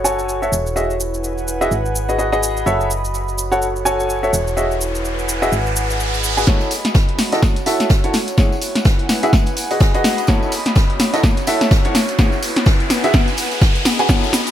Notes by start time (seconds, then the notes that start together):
Already playing: F#1 F#4 A4 C#5
0.04 F#4 A4 C#5 G#5, shaker
0.19 shaker
0.29 shaker
0.42 F#4 A4 C#5 E5, shaker
0.52 E1 E4, shaker
0.67 shaker
0.76 F#4 G#4 D#5 E5, shaker
0.89 B4, shaker
1.00 shaker
1.07 F#5 G#5
1.14 shaker
1.24 shaker
1.38 shaker
1.48 shaker
1.61 F#4 G#4 D#5 E5, shaker
1.71 G#1 G#4, shaker
1.86 shaker
1.95 shaker
2.09 F#4 G#4 B4 D#5, shaker
2.15 F#4 G#4 B4 D#5 B5
2.19 shaker
2.32 F#4 G#4 B4 D#5, shaker
2.43 shaker
2.57 shaker
2.66 F#1 F#4 A4 C#5 E5, riser, shaker
2.81 shaker
2.91 shaker
3.05 shaker
3.14 C#5, shaker
3.28 shaker
3.38 shaker
3.42 A4
3.52 F#4 A4 C#5 F#5, shaker
3.62 shaker
3.76 shaker
3.85 F#4 A4 C#5 G#5, shaker
4.00 shaker
4.10 shaker
4.23 F#4 A4 C#5 E5, shaker
4.33 E1 E4, shaker
4.47 shaker
4.55 F#4 G#4 B4 D#5 E5, shaker
4.71 shaker
4.81 shaker
4.87 F#5 G#5
4.95 shaker
5.05 shaker
5.19 shaker
5.29 shaker
5.42 F#4 G#4 D#5 E5, shaker
5.52 G#1 G#4, shaker
5.66 shaker
5.76 shaker
5.90 D#5, shaker
5.96 B5
6.00 shaker
6.14 shaker
6.24 shaker
6.37 F#4 G#4 B4 G#5, shaker
6.47 E4 F#4 A4 C#5, kick, snare, closed hi-hat, tambourine, riser
6.61 tambourine
6.71 closed hi-hat, open hi-hat, tambourine
6.85 snare, closed hi-hat, tambourine
6.92 A5, kick, snare, closed hi-hat, tambourine
7.04 C#5
7.09 closed hi-hat
7.18 snare, closed hi-hat, open hi-hat, tambourine
7.32 E4 F#4 A4 D#5, snare, closed hi-hat, tambourine
7.42 kick, snare, closed hi-hat, tambourine
7.56 closed hi-hat, tambourine
7.66 E4 F#4 A4 E5, snare, closed hi-hat, open hi-hat, tambourine
7.80 snare, closed hi-hat, tambourine
7.89 kick, snare, closed hi-hat, tambourine
8.04 E4 F#4 A4 C#5, closed hi-hat
8.13 E4, snare, closed hi-hat, open hi-hat, tambourine
8.28 closed hi-hat, tambourine
8.33 F#5
8.37 E4 F#4 G#4 C#5, kick, snare, closed hi-hat, tambourine
8.52 tambourine
8.62 closed hi-hat, open hi-hat, tambourine
8.68 B4 G#5
8.75 snare, closed hi-hat, tambourine
8.85 kick, snare, closed hi-hat, tambourine
8.99 closed hi-hat
9.09 snare, closed hi-hat, open hi-hat, tambourine
9.23 E4 F#4 G#4 E5, closed hi-hat, tambourine
9.33 G#4, kick, snare, closed hi-hat, tambourine
9.46 closed hi-hat, tambourine
9.56 D#5, closed hi-hat, open hi-hat, tambourine
9.71 F#4 G#4 B4 D#5, closed hi-hat, open hi-hat, tambourine
9.77 F#4 G#4 B4 D#5 B5, kick, closed hi-hat, tambourine
9.81 snare
9.94 F#4 G#4 B4 D#5, closed hi-hat
10.04 snare, open hi-hat, tambourine
10.18 closed hi-hat, tambourine
10.27 E4 F#4 A4 C#5, kick, snare, closed hi-hat, tambourine
10.42 tambourine
10.50 C#5, closed hi-hat, open hi-hat, tambourine
10.65 snare, closed hi-hat, tambourine
10.75 kick, snare, closed hi-hat, tambourine
10.90 closed hi-hat
10.99 snare, closed hi-hat, open hi-hat, tambourine
11.04 A5
11.14 E4 F#4 A4 D#5, snare, closed hi-hat, tambourine
11.23 kick, snare, closed hi-hat, tambourine
11.37 closed hi-hat, tambourine
11.47 E4 F#4 A4 E5, snare, closed hi-hat, open hi-hat, tambourine
11.61 snare, closed hi-hat, tambourine
11.71 kick, snare, closed hi-hat, tambourine
11.85 E4 F#4 A4 C#5, closed hi-hat
11.95 E4, snare, closed hi-hat, open hi-hat, tambourine
12.05 B4, closed hi-hat, tambourine
12.09 closed hi-hat
12.18 E4 F#4 G#4 C#5, kick, snare, closed hi-hat, tambourine
12.32 tambourine
12.42 closed hi-hat, open hi-hat, tambourine
12.50 F#5 G#5
12.56 snare, closed hi-hat, tambourine
12.66 kick, snare, closed hi-hat, tambourine
12.80 closed hi-hat
12.90 snare, closed hi-hat, open hi-hat, tambourine
13.04 E4 F#4 G#4 E5, closed hi-hat, tambourine
13.13 G#4, kick, snare, closed hi-hat, tambourine
13.28 closed hi-hat, tambourine
13.37 closed hi-hat, open hi-hat, tambourine
13.51 closed hi-hat, open hi-hat, tambourine
13.57 D#5 B5
13.62 kick, snare, closed hi-hat, tambourine
13.75 closed hi-hat
13.85 snare, open hi-hat, tambourine
13.99 F#4 G#4 B4 G#5, closed hi-hat, tambourine
14.08 E4 F#4 A4 C#5, kick, snare, closed hi-hat, tambourine, shaker
14.24 tambourine, shaker
14.33 snare, closed hi-hat, open hi-hat, tambourine, shaker
14.47 closed hi-hat, tambourine, shaker